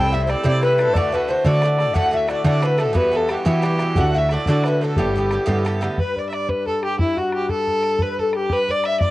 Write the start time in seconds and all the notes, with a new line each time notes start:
Already playing: C2 A2 G3 C4 E4 G5
0.12 A2 G3 C4 E4 E5, bodhran
0.24 A2 G3 C5
0.29 C4 E4 D5, bodhran
0.43 A2 C3 G3 C4 E4 D5, bodhran
0.61 A2 G3 C4 E4 B4, bodhran
0.78 A2 G3 C4 E4, bodhran
0.82 A4
0.93 D2 A2 D3 A3 F#4 D5, bodhran
1.12 A2 D3 A3 F#4 B4, bodhran
1.28 A2 D3 A3 F#4 C5
1.44 A2 D3 A3 F#4 D5, bodhran
1.62 A2 D3 A3 F#4, bodhran
1.78 A2 D3 A3 F#4, bodhran
1.94 D2 A2 D3 A3 F#4 F#5, bodhran
1.99 F#5
2.11 A2 D3 A3 F#4 E5, bodhran
2.17 E5
2.28 A2 D3 A3 F#4 D5, bodhran
2.32 D5
2.44 A2 D3 A3 F#4 D5, bodhran
2.62 A2 D3 A3 F#4 B4, bodhran
2.78 A2 D3 A3 F#4 A4, bodhran
2.83 A4
2.93 E2 G2 E3 B3 F#4 B4, bodhran
3.12 G2 E3 B3 F#4 A4, bodhran
3.16 A4
3.29 G2 E3 B3 F#4 G4, bodhran
3.33 G4
3.45 G2 E3 B3 F#4 G4, bodhran
3.62 G2 E3 B3 F#4, bodhran
3.79 G2 E3 B3 F#4, bodhran
3.95 D2 A2 D3 A3 F#4 F#5, bodhran
4.00 F#5
4.14 A2 D3 A3 F#4 E5, bodhran
4.18 E5
4.29 A2 D3 A3 D5, bodhran
4.34 F#4
4.46 A2 D3 A3 F#4 D5, bodhran
4.64 A2 D3 A3 B4, bodhran
4.68 F#4
4.81 A2 D3 A3 F#4 A4
4.96 G1 A2 D3 B3 G4, bodhran
5.15 A2 D3 B3, bodhran
5.19 G4
5.31 A2 D3 B3 G4, bodhran
5.46 G2 A2 D3 B3 G4, bodhran
5.65 A2 D3 B3 G4, bodhran
5.81 A2 D3 B3 G4, bodhran
5.98 G2 G3 B4, bodhran
6.16 D5, bodhran
6.29 D5 E5, bodhran
6.34 D5
6.49 B4, bodhran
6.66 A4, bodhran
6.83 G4, bodhran
6.99 E4, bodhran
7.17 F#4, bodhran
7.32 G4, bodhran
7.49 A4, bodhran
7.67 bodhran
7.83 bodhran
7.99 B4, bodhran
8.18 A4, bodhran
8.33 G4, bodhran
8.50 B4, bodhran
8.68 D5, bodhran
8.84 E5, bodhran
8.88 E5
9.00 D5, bodhran